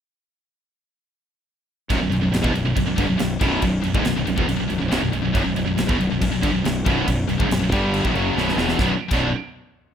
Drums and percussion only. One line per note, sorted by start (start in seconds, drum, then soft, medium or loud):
1.90 kick loud
1.90 crash medium
2.12 crash medium
2.34 snare loud
2.34 crash medium
2.44 kick loud
2.55 crash medium
2.77 kick medium
2.77 crash medium
2.98 kick loud
2.98 crash medium
3.19 snare loud
3.19 crash medium
3.41 kick loud
3.41 crash medium
3.62 kick medium
3.62 crash medium
3.83 crash medium
3.95 kick loud
4.05 snare loud
4.05 crash medium
4.27 crash medium
4.38 kick loud
4.49 crash medium
4.70 crash medium
4.91 snare loud
4.91 crash medium
5.13 crash medium
5.35 kick loud
5.35 crash medium
5.56 crash medium
5.78 snare loud
5.78 crash medium
5.89 kick loud
6.01 crash medium
6.22 kick medium
6.22 crash medium
6.43 kick loud
6.43 crash medium
6.65 snare loud
6.65 crash medium
6.86 kick loud
6.86 crash medium
7.08 kick medium
7.08 crash medium
7.29 crash medium
7.40 kick loud
7.51 snare loud
7.51 crash medium
7.72 kick loud
7.72 crash medium
7.94 crash medium
8.05 kick loud
8.15 crash medium
8.38 snare medium
8.49 snare medium
8.58 snare loud
8.69 snare medium
8.79 kick loud
8.79 snare medium
9.11 kick loud
9.11 crash medium